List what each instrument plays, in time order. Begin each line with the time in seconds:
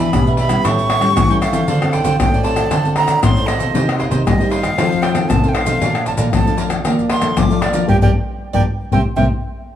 Already playing: nylon-string guitar E3, flute B5
0.13 nylon-string guitar B2 B3 D4 G4, pandeiro, tamborim, maracas, surdo
0.27 cavaquinho G4 B4 E5, pandeiro, maracas
0.37 cavaquinho D4 G4 B4 E5, flute B5, pandeiro
0.49 nylon-string guitar G3 C#4 E4, cavaquinho G4 B4 E5, pandeiro, tamborim, maracas, surdo
0.64 nylon-string guitar A2, cavaquinho E4 A4 C#5 G5, flute C#6, pandeiro, tamborim, maracas, surdo
0.79 pandeiro, maracas, surdo
0.89 cavaquinho E4 A4 C#5 G5, pandeiro, tamborim
1.00 nylon-string guitar G3 C#4 E4, cavaquinho A4 C#5 G5, pandeiro, tamborim, maracas
1.16 nylon-string guitar E3, pandeiro, tamborim, maracas, surdo
1.29 nylon-string guitar G3 C#4 E4, cavaquinho A4 C#5 G5, pandeiro, maracas
1.41 cavaquinho E4 A4 C#5 G5, flute F5, pandeiro, tamborim, maracas
1.52 nylon-string guitar E3 C4 F4 A4, cavaquinho E4 A4 C#5 G5, pandeiro, maracas
1.68 nylon-string guitar D3, cavaquinho F4 A4 C5 D5, pandeiro, maracas, surdo
1.82 nylon-string guitar C4 F4 A4, pandeiro, tamborim, maracas
1.92 cavaquinho F4 A4 C5 D5, flute G5, pandeiro, surdo
2.04 nylon-string guitar D3 C4 F4 A4, cavaquinho F4 A4 C5 D5, pandeiro, maracas, surdo
2.19 nylon-string guitar A2, flute G5, pandeiro, tamborim, maracas, surdo
2.33 cavaquinho A4 C5 D5, pandeiro, maracas
2.44 nylon-string guitar C4 F4 A4, cavaquinho F4 A4 C5 D5, flute A5, pandeiro
2.56 cavaquinho A4 C5 D5, pandeiro, tamborim, maracas, surdo
2.71 nylon-string guitar D3, cavaquinho F4 A4 C5 D5, pandeiro, tamborim, maracas, surdo
2.85 nylon-string guitar C4 F4 A4, pandeiro, maracas, surdo
2.96 cavaquinho F4 A4 C5 D5, flute A#5, pandeiro, tamborim
3.08 cavaquinho A4 C5 D5, pandeiro, tamborim, maracas
3.22 nylon-string guitar A2 C4 F4 A4, flute C6, pandeiro, tamborim, maracas, surdo
3.36 cavaquinho A4 C5 D5, pandeiro, maracas
3.47 nylon-string guitar C4 F4 A4, cavaquinho F4 A4 C5 D5, flute D#5, pandeiro, tamborim, maracas
3.59 nylon-string guitar B2, cavaquinho F4 A4 C5 D5, pandeiro, maracas
3.74 nylon-string guitar C3 A#3 D#4 G4, cavaquinho D#4 A#4 C5 D#5, pandeiro, maracas, surdo
3.89 pandeiro, tamborim, maracas
3.98 cavaquinho D#4 A#4 C5 D#5, flute F5, pandeiro, surdo
4.10 nylon-string guitar C3 A#3 D#4 G4, cavaquinho D#4 A#4 C5 D#5, pandeiro, maracas, surdo
4.25 nylon-string guitar G2 G3, flute D#5, pandeiro, tamborim, maracas, surdo
4.39 nylon-string guitar A#3 D#4 G4, cavaquinho A#4 C5 D#5, pandeiro, maracas
4.50 cavaquinho D#4 A#4 C5 D#5, flute F5, pandeiro
4.63 cavaquinho A#4 C5 D#5, pandeiro, tamborim, maracas, surdo
4.77 nylon-string guitar F2 D#3 F3 A3 C4, cavaquinho D#4 A4 C5 F5, pandeiro, tamborim, maracas, surdo
4.92 pandeiro, maracas, surdo
5.02 cavaquinho D#4 A4 C5 F5, flute G5, pandeiro, tamborim
5.14 nylon-string guitar D#3 A3 C4, cavaquinho A4 C5 F5, pandeiro, tamborim, maracas
5.29 nylon-string guitar C3, flute A5, pandeiro, tamborim, maracas, surdo
5.42 nylon-string guitar D#3 A3 C4, cavaquinho A4 C5 F5, pandeiro, maracas
5.48 flute G5
5.54 cavaquinho D#4 A4 C5 F5, flute F5, pandeiro, tamborim, surdo
5.65 nylon-string guitar B2 F3 A3 D4, cavaquinho D#4 A4 C5 F5, pandeiro, maracas
5.80 nylon-string guitar A#2, cavaquinho A#4 D5 F5 A5, pandeiro, maracas, surdo
5.95 pandeiro, tamborim, maracas
6.06 cavaquinho A#4 D5 F5 A5, flute A5, pandeiro, maracas, surdo
6.17 nylon-string guitar A#2 F3 A3 D4, cavaquinho A#4 D5 F5 A5, pandeiro, maracas, surdo
6.32 nylon-string guitar F2 F3, flute A5, pandeiro, tamborim, maracas, surdo
6.46 nylon-string guitar F3 A3 D4, cavaquinho D5 F5 A5, pandeiro, maracas
6.58 cavaquinho A#4 D5 F5 A5, pandeiro, maracas
6.70 cavaquinho D5 F5 A5, pandeiro, tamborim, maracas, surdo
6.84 nylon-string guitar A#2 F3 A#3 D4, cavaquinho A#4 D5 F5 A5, pandeiro, tamborim, maracas, surdo
6.99 pandeiro, maracas, surdo
7.09 cavaquinho A#4 D5 F5 A5, flute C6, pandeiro, tamborim
7.21 nylon-string guitar F3 A3 D4, cavaquinho D5 F5 A5, pandeiro, tamborim, maracas
7.37 nylon-string guitar F2 F3, flute D6, pandeiro, tamborim, maracas, surdo
7.50 nylon-string guitar F3 A3 D4, cavaquinho D5 F5 A5, pandeiro, maracas
7.62 cavaquinho A#4 D5 F5 A5, flute D5, pandeiro, tamborim, surdo
7.72 nylon-string guitar F3 A#3 D4, cavaquinho A#4 D5 F5 A5, pandeiro, maracas
7.87 nylon-string guitar G2 F3 G3 A#3, cavaquinho G4 A#4 D5, flute G5, surdo
8.02 nylon-string guitar G2 F3 G3 A#3, cavaquinho G4 A#4 D5, flute G5, surdo
8.53 nylon-string guitar G2 F3 G3 A#3, cavaquinho G4 A#4 D5, flute G5, surdo
8.92 nylon-string guitar C3 G3 A#3 C4, cavaquinho A#4 C5 E5, flute G5, surdo
9.16 nylon-string guitar C3 G3 A#3 C4, cavaquinho A#4 C5 E5, flute G5, surdo